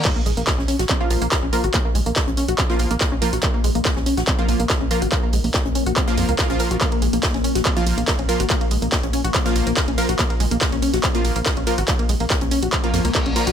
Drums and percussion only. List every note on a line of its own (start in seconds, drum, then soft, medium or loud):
0.05 kick loud
0.05 clap loud
0.05 closed hi-hat medium
0.05 crash loud
0.26 closed hi-hat medium
0.26 open hi-hat loud
0.37 closed hi-hat medium
0.47 kick loud
0.47 snare loud
0.47 clap loud
0.47 closed hi-hat medium
0.59 snare medium
0.68 closed hi-hat medium
0.68 open hi-hat loud
0.79 snare medium
0.79 closed hi-hat medium
0.89 kick loud
0.89 clap loud
0.89 closed hi-hat medium
1.10 closed hi-hat medium
1.10 open hi-hat loud
1.22 closed hi-hat medium
1.31 kick loud
1.31 snare loud
1.31 clap loud
1.31 closed hi-hat medium
1.31 closed hi-hat loud
1.53 closed hi-hat medium
1.53 open hi-hat loud
1.64 closed hi-hat medium
1.74 kick loud
1.74 clap loud
1.74 closed hi-hat medium
1.95 closed hi-hat medium
1.95 open hi-hat loud
2.06 closed hi-hat medium
2.16 kick loud
2.16 snare loud
2.16 clap loud
2.16 closed hi-hat medium
2.28 closed hi-hat soft
2.37 closed hi-hat medium
2.37 open hi-hat loud
2.48 closed hi-hat medium
2.58 kick loud
2.58 clap loud
2.58 closed hi-hat loud
2.58 closed hi-hat medium
2.70 snare medium
2.79 closed hi-hat medium
2.79 open hi-hat loud
2.91 closed hi-hat medium
3.00 kick loud
3.00 snare loud
3.00 clap loud
3.00 closed hi-hat medium
3.22 closed hi-hat medium
3.22 open hi-hat loud
3.33 closed hi-hat medium
3.42 kick loud
3.42 clap loud
3.42 closed hi-hat medium
3.64 closed hi-hat medium
3.64 open hi-hat loud
3.75 closed hi-hat medium
3.85 kick loud
3.85 snare loud
3.85 clap loud
3.85 closed hi-hat medium
3.96 snare medium
4.06 closed hi-hat medium
4.06 open hi-hat loud
4.17 snare medium
4.17 closed hi-hat medium
4.27 kick loud
4.27 clap loud
4.27 closed hi-hat medium
4.49 closed hi-hat medium
4.49 open hi-hat loud
4.60 closed hi-hat medium
4.70 kick loud
4.70 snare loud
4.70 clap loud
4.70 closed hi-hat medium
4.91 closed hi-hat medium
4.91 open hi-hat loud
5.02 closed hi-hat medium
5.12 kick loud
5.12 clap loud
5.12 closed hi-hat medium
5.33 closed hi-hat medium
5.33 open hi-hat loud
5.44 open hi-hat medium
5.53 kick loud
5.53 snare loud
5.53 clap loud
5.53 closed hi-hat medium
5.66 closed hi-hat soft
5.75 closed hi-hat medium
5.75 open hi-hat loud
5.86 closed hi-hat medium
5.96 kick loud
5.96 clap loud
5.96 closed hi-hat medium
6.07 snare medium
6.17 closed hi-hat medium
6.17 open hi-hat loud
6.29 closed hi-hat medium
6.39 kick loud
6.39 snare loud
6.39 clap loud
6.39 closed hi-hat medium
6.59 closed hi-hat medium
6.59 open hi-hat loud
6.71 closed hi-hat medium
6.81 kick loud
6.81 clap loud
6.81 closed hi-hat medium
6.81 ride medium
6.92 ride medium
7.02 closed hi-hat medium
7.02 open hi-hat loud
7.02 ride medium
7.13 closed hi-hat medium
7.13 ride medium
7.23 kick loud
7.23 snare loud
7.23 clap loud
7.23 closed hi-hat medium
7.23 ride medium
7.34 snare medium
7.34 ride medium
7.44 closed hi-hat medium
7.44 open hi-hat loud
7.44 ride medium
7.55 snare medium
7.55 closed hi-hat medium
7.55 ride medium
7.65 kick loud
7.65 clap loud
7.65 closed hi-hat medium
7.65 ride medium
7.77 ride medium
7.87 closed hi-hat medium
7.87 open hi-hat loud
7.87 ride medium
7.98 closed hi-hat medium
7.98 ride medium
8.08 kick loud
8.08 snare loud
8.08 clap loud
8.08 closed hi-hat medium
8.08 ride medium
8.19 ride medium
8.29 closed hi-hat medium
8.29 open hi-hat loud
8.29 ride medium
8.40 closed hi-hat medium
8.40 ride medium
8.50 kick loud
8.50 clap loud
8.50 closed hi-hat loud
8.50 closed hi-hat medium
8.50 ride medium
8.61 ride medium
8.71 closed hi-hat medium
8.71 open hi-hat loud
8.71 ride medium
8.82 closed hi-hat medium
8.82 ride medium
8.92 kick loud
8.92 snare loud
8.92 clap loud
8.92 closed hi-hat medium
8.92 ride medium
9.03 closed hi-hat soft
9.03 ride medium
9.13 closed hi-hat medium
9.13 open hi-hat loud
9.13 ride medium
9.25 closed hi-hat medium
9.25 ride medium
9.34 kick loud
9.34 clap loud
9.34 closed hi-hat loud
9.34 closed hi-hat medium
9.34 ride medium
9.46 snare medium
9.46 ride medium
9.56 closed hi-hat medium
9.56 open hi-hat loud
9.56 ride medium
9.67 closed hi-hat medium
9.67 ride medium
9.76 kick loud
9.76 snare loud
9.76 clap loud
9.76 closed hi-hat medium
9.76 ride medium
9.88 ride medium
9.98 closed hi-hat medium
9.98 open hi-hat loud
9.98 ride medium
10.09 closed hi-hat medium
10.09 ride medium
10.19 kick loud
10.19 clap loud
10.19 closed hi-hat medium
10.19 closed hi-hat loud
10.19 ride medium
10.30 ride medium
10.40 closed hi-hat medium
10.40 open hi-hat loud
10.40 ride medium
10.51 closed hi-hat medium
10.51 ride medium
10.61 kick loud
10.61 snare loud
10.61 clap loud
10.61 closed hi-hat medium
10.61 ride medium
10.72 snare soft
10.72 ride medium
10.82 closed hi-hat medium
10.82 open hi-hat loud
10.82 ride medium
10.94 snare medium
10.94 closed hi-hat medium
10.94 ride medium
11.04 kick loud
11.04 clap loud
11.04 closed hi-hat medium
11.04 closed hi-hat loud
11.04 ride medium
11.15 ride medium
11.25 closed hi-hat medium
11.25 open hi-hat loud
11.25 ride medium
11.36 closed hi-hat medium
11.36 ride medium
11.46 kick loud
11.46 snare loud
11.46 clap loud
11.46 closed hi-hat medium
11.46 ride medium
11.57 ride medium
11.67 closed hi-hat medium
11.67 open hi-hat loud
11.67 ride medium
11.78 closed hi-hat medium
11.78 ride medium
11.88 kick loud
11.88 clap loud
11.88 closed hi-hat loud
11.88 closed hi-hat medium
11.88 ride medium
11.99 ride medium
12.09 closed hi-hat medium
12.09 open hi-hat loud
12.09 ride medium
12.20 open hi-hat medium
12.20 ride medium
12.30 kick loud
12.30 snare loud
12.30 clap loud
12.30 closed hi-hat medium
12.30 ride medium
12.41 closed hi-hat soft
12.41 ride medium
12.51 closed hi-hat medium
12.51 open hi-hat loud
12.51 ride medium
12.63 closed hi-hat medium
12.63 ride medium
12.73 kick loud
12.73 clap loud
12.73 closed hi-hat medium
12.73 ride medium
12.84 ride medium
12.94 closed hi-hat medium
12.94 open hi-hat loud
12.94 ride medium
13.05 closed hi-hat medium
13.05 ride medium
13.15 kick loud
13.15 clap loud
13.15 closed hi-hat medium
13.15 ride medium
13.26 ride medium
13.36 snare loud
13.36 closed hi-hat medium
13.36 open hi-hat loud
13.36 ride medium
13.47 closed hi-hat medium
13.47 ride medium